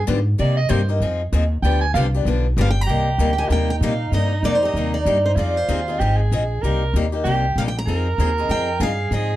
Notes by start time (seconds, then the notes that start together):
0.07 G#2 D3 F3 B3 D4 G4
0.38 C3 G3 A#3 D#4 G4 D5
0.57 D#5
0.69 G2 C3 G3 A#3 D#4 G4 C5
0.89 A#3 D#4 G4
1.00 F2 F3 C4 D#4 G#4
1.32 D#2 F3 C4 D#4 G#4
1.62 D2 D3 F3 B3 D4 G4 G5
1.81 G#5
1.94 C2 D3 F3 B3 D4 G4 F5
2.15 B3 D4 G4
2.25 B1 D3 F3 B3 D4 G4
2.57 G1 D3 F3 B3 D4 G4
2.61 F5
2.70 G5
2.81 A#5
2.87 C2 C3 G3 A#3 D#4 G4
3.18 D2 C3 G3 A#3 D#4 G4
3.33 G5
3.38 A#3 D#4 G4 G#5
3.49 D#2 C3 G3 A#3 D#4 G4 G5
3.70 G5
3.81 A#2 C3 G3 A#3 D#4 G4 F5
4.12 G2 C3 G3 A#3 D#4 G4 D#5
4.43 F2 C3 G3 A#3 D#4 G4 D5
4.55 C5
4.63 A#3 D#4 G4 D#5
4.74 D#2 C3 G3 A#3 D#4 G4
4.94 D5
5.05 G2 C3 G3 A#3 D#4 G4
5.25 C5
5.36 F2 F3 C4 D#4 F4 G#4 D5
5.57 C5
5.68 D#2 F3 C4 D#4 G#4
5.88 C4 D#4 G#4
5.99 G#1 F3 C4 D#4 G4 G#4
6.16 G#4
6.32 A#1 F3 C4 D#4 G#4
6.62 C2 C3 G3 A#3 D#4 G4 A#4
6.94 D#2 C3 G3 A#3 D#4 G4
7.12 A#3 D#4 G4
7.24 C2 C3 G3 A#3 D#4 G4
7.56 A#1 C3 G3 F5
7.60 A#3 D#4 G4
7.68 G5
7.79 A#5
7.86 F2 F3 C4 D#4 G#4 A#4
8.18 D#2 F3 C4 D#4 G#4
8.38 C4 D#4 G#4
8.49 F2 F3 C4 D#4 G#4 G5
8.80 G2 F3 C4 D#4 G#4 F5
9.11 G#2 F3 C4 D#4 G#4 D#5